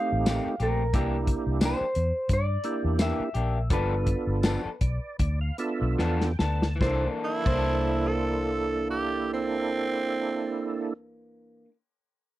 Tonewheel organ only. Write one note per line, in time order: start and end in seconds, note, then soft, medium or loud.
0.00 0.55 A3 medium
0.00 0.55 C4 medium
0.00 0.56 D#4 medium
0.00 0.56 G4 medium
0.94 1.78 A#3 medium
0.94 1.78 D4 medium
0.94 1.78 E4 medium
0.94 1.78 G4 medium
2.64 3.29 A#3 medium
2.64 3.29 D4 medium
2.64 3.29 E4 medium
2.64 3.30 G4 medium
3.70 4.62 B3 medium
3.70 4.62 D4 medium
3.70 4.62 F4 medium
3.70 4.62 A4 medium
4.81 5.17 D5 medium
5.20 5.39 D5 medium
5.41 5.57 F5 medium
5.58 6.32 B3 medium
5.58 6.33 D4 medium
5.58 6.33 F4 medium
5.58 6.33 A4 medium
5.58 5.96 E5 medium
5.99 6.19 F5 medium
6.21 6.38 G5 medium
6.39 6.78 A5 medium
6.81 7.06 A#3 medium
6.81 7.06 D4 medium
6.81 7.06 E4 medium
6.81 7.06 A4 medium
7.46 10.94 A#3 medium
7.46 10.94 D4 medium
7.46 10.94 E4 medium
7.46 10.93 A4 medium